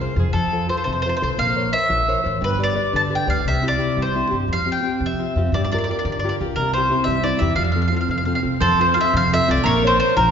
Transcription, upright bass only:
0, 0, Header, 1, 2, 480
1, 0, Start_track
1, 0, Key_signature, -1, "major"
1, 0, Tempo, 344630
1, 482, Time_signature, 6, 3, 24, 8
1, 14361, End_track
2, 0, Start_track
2, 0, Title_t, "Upright bass"
2, 0, Program_c, 0, 32
2, 226, Note_on_c, 0, 41, 90
2, 386, Note_off_c, 0, 41, 0
2, 466, Note_on_c, 0, 41, 86
2, 948, Note_off_c, 0, 41, 0
2, 1221, Note_on_c, 0, 41, 82
2, 1540, Note_off_c, 0, 41, 0
2, 1704, Note_on_c, 0, 36, 73
2, 1856, Note_off_c, 0, 36, 0
2, 1932, Note_on_c, 0, 34, 85
2, 2400, Note_off_c, 0, 34, 0
2, 2648, Note_on_c, 0, 34, 80
2, 2966, Note_off_c, 0, 34, 0
2, 3147, Note_on_c, 0, 33, 84
2, 3293, Note_off_c, 0, 33, 0
2, 3367, Note_on_c, 0, 31, 89
2, 3830, Note_off_c, 0, 31, 0
2, 4089, Note_on_c, 0, 31, 73
2, 4401, Note_off_c, 0, 31, 0
2, 4559, Note_on_c, 0, 38, 88
2, 4709, Note_off_c, 0, 38, 0
2, 4803, Note_on_c, 0, 36, 74
2, 5271, Note_off_c, 0, 36, 0
2, 5525, Note_on_c, 0, 36, 81
2, 5847, Note_off_c, 0, 36, 0
2, 6020, Note_on_c, 0, 43, 75
2, 6171, Note_off_c, 0, 43, 0
2, 6243, Note_on_c, 0, 41, 69
2, 6717, Note_off_c, 0, 41, 0
2, 6971, Note_on_c, 0, 41, 80
2, 7291, Note_off_c, 0, 41, 0
2, 7462, Note_on_c, 0, 41, 82
2, 7612, Note_off_c, 0, 41, 0
2, 7687, Note_on_c, 0, 43, 86
2, 8156, Note_off_c, 0, 43, 0
2, 8423, Note_on_c, 0, 43, 85
2, 8737, Note_off_c, 0, 43, 0
2, 8923, Note_on_c, 0, 37, 86
2, 9064, Note_off_c, 0, 37, 0
2, 9144, Note_on_c, 0, 36, 82
2, 9602, Note_off_c, 0, 36, 0
2, 9844, Note_on_c, 0, 36, 90
2, 10158, Note_off_c, 0, 36, 0
2, 10325, Note_on_c, 0, 40, 87
2, 10474, Note_off_c, 0, 40, 0
2, 10539, Note_on_c, 0, 41, 87
2, 11015, Note_off_c, 0, 41, 0
2, 11260, Note_on_c, 0, 41, 80
2, 11588, Note_off_c, 0, 41, 0
2, 11763, Note_on_c, 0, 36, 70
2, 11918, Note_off_c, 0, 36, 0
2, 11992, Note_on_c, 0, 41, 98
2, 12467, Note_off_c, 0, 41, 0
2, 12721, Note_on_c, 0, 41, 104
2, 13040, Note_off_c, 0, 41, 0
2, 13221, Note_on_c, 0, 36, 108
2, 13368, Note_off_c, 0, 36, 0
2, 13447, Note_on_c, 0, 34, 96
2, 13907, Note_off_c, 0, 34, 0
2, 14168, Note_on_c, 0, 34, 109
2, 14361, Note_off_c, 0, 34, 0
2, 14361, End_track
0, 0, End_of_file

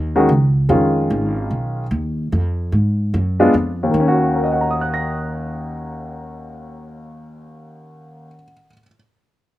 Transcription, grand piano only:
0, 0, Header, 1, 2, 480
1, 0, Start_track
1, 0, Key_signature, -6, "minor"
1, 0, Tempo, 405405
1, 829, Time_signature, 4, 2, 24, 8
1, 11350, End_track
2, 0, Start_track
2, 0, Title_t, "Grand piano"
2, 0, Program_c, 0, 0
2, 185, Note_on_c, 0, 51, 68
2, 185, Note_on_c, 0, 61, 57
2, 189, Note_on_c, 0, 56, 61
2, 193, Note_on_c, 0, 66, 66
2, 334, Note_off_c, 0, 51, 0
2, 334, Note_off_c, 0, 61, 0
2, 336, Note_off_c, 0, 56, 0
2, 338, Note_off_c, 0, 66, 0
2, 815, Note_on_c, 0, 56, 50
2, 820, Note_on_c, 0, 51, 53
2, 822, Note_on_c, 0, 61, 56
2, 827, Note_on_c, 0, 65, 59
2, 2160, Note_off_c, 0, 56, 0
2, 2163, Note_off_c, 0, 51, 0
2, 2164, Note_off_c, 0, 61, 0
2, 2167, Note_off_c, 0, 65, 0
2, 4022, Note_on_c, 0, 56, 67
2, 4025, Note_on_c, 0, 59, 59
2, 4026, Note_on_c, 0, 62, 62
2, 4032, Note_on_c, 0, 65, 71
2, 4171, Note_off_c, 0, 56, 0
2, 4173, Note_off_c, 0, 59, 0
2, 4173, Note_off_c, 0, 62, 0
2, 4176, Note_off_c, 0, 65, 0
2, 4535, Note_on_c, 0, 39, 59
2, 4630, Note_on_c, 0, 51, 54
2, 4735, Note_on_c, 0, 61, 54
2, 4830, Note_on_c, 0, 66, 68
2, 5160, Note_on_c, 0, 70, 43
2, 5253, Note_on_c, 0, 75, 43
2, 5351, Note_on_c, 0, 78, 42
2, 5458, Note_on_c, 0, 82, 40
2, 5571, Note_on_c, 0, 87, 35
2, 5700, Note_on_c, 0, 90, 33
2, 5845, Note_on_c, 0, 94, 34
2, 9776, Note_off_c, 0, 39, 0
2, 9871, Note_off_c, 0, 51, 0
2, 9976, Note_off_c, 0, 61, 0
2, 10072, Note_off_c, 0, 66, 0
2, 10243, Note_off_c, 0, 70, 0
2, 10289, Note_off_c, 0, 75, 0
2, 10338, Note_off_c, 0, 78, 0
2, 10392, Note_off_c, 0, 82, 0
2, 10448, Note_off_c, 0, 87, 0
2, 10513, Note_off_c, 0, 90, 0
2, 10585, Note_off_c, 0, 94, 0
2, 11350, End_track
0, 0, End_of_file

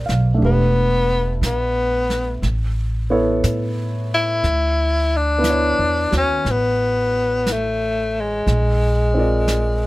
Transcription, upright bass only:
0, 0, Header, 1, 2, 480
1, 0, Start_track
1, 0, Tempo, 1006711
1, 200, Time_signature, 4, 2, 24, 8
1, 4704, End_track
2, 0, Start_track
2, 0, Title_t, "Upright bass"
2, 0, Program_c, 0, 32
2, 42, Note_on_c, 0, 35, 54
2, 190, Note_off_c, 0, 35, 0
2, 201, Note_on_c, 0, 28, 72
2, 661, Note_off_c, 0, 28, 0
2, 674, Note_on_c, 0, 34, 58
2, 1137, Note_off_c, 0, 34, 0
2, 1155, Note_on_c, 0, 33, 66
2, 1617, Note_off_c, 0, 33, 0
2, 1637, Note_on_c, 0, 45, 58
2, 2097, Note_off_c, 0, 45, 0
2, 2114, Note_on_c, 0, 38, 69
2, 2736, Note_off_c, 0, 38, 0
2, 2758, Note_on_c, 0, 40, 47
2, 2906, Note_off_c, 0, 40, 0
2, 2918, Note_on_c, 0, 39, 58
2, 3066, Note_off_c, 0, 39, 0
2, 3075, Note_on_c, 0, 33, 71
2, 4018, Note_off_c, 0, 33, 0
2, 4036, Note_on_c, 0, 34, 67
2, 4704, Note_off_c, 0, 34, 0
2, 4704, End_track
0, 0, End_of_file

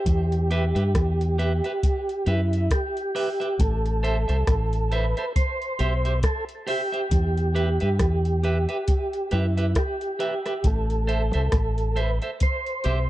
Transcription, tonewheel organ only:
0, 0, Header, 1, 2, 480
1, 0, Start_track
1, 0, Tempo, 882353
1, 30, Time_signature, 4, 2, 24, 8
1, 7124, End_track
2, 0, Start_track
2, 0, Title_t, "Tonewheel organ"
2, 0, Program_c, 0, 16
2, 0, Note_on_c, 0, 67, 93
2, 1239, Note_on_c, 0, 64, 82
2, 1278, Note_off_c, 0, 67, 0
2, 1482, Note_off_c, 0, 64, 0
2, 1483, Note_on_c, 0, 67, 87
2, 1960, Note_on_c, 0, 69, 96
2, 1971, Note_off_c, 0, 67, 0
2, 2678, Note_on_c, 0, 71, 94
2, 2696, Note_off_c, 0, 69, 0
2, 2897, Note_off_c, 0, 71, 0
2, 2916, Note_on_c, 0, 72, 100
2, 3371, Note_off_c, 0, 72, 0
2, 3402, Note_on_c, 0, 69, 91
2, 3507, Note_off_c, 0, 69, 0
2, 3646, Note_on_c, 0, 67, 106
2, 5081, Note_on_c, 0, 64, 78
2, 5119, Note_off_c, 0, 67, 0
2, 5321, Note_on_c, 0, 67, 84
2, 5322, Note_off_c, 0, 64, 0
2, 5802, Note_on_c, 0, 69, 92
2, 5809, Note_off_c, 0, 67, 0
2, 6525, Note_on_c, 0, 71, 90
2, 6537, Note_off_c, 0, 69, 0
2, 6629, Note_off_c, 0, 71, 0
2, 6761, Note_on_c, 0, 72, 100
2, 7124, Note_off_c, 0, 72, 0
2, 7124, End_track
0, 0, End_of_file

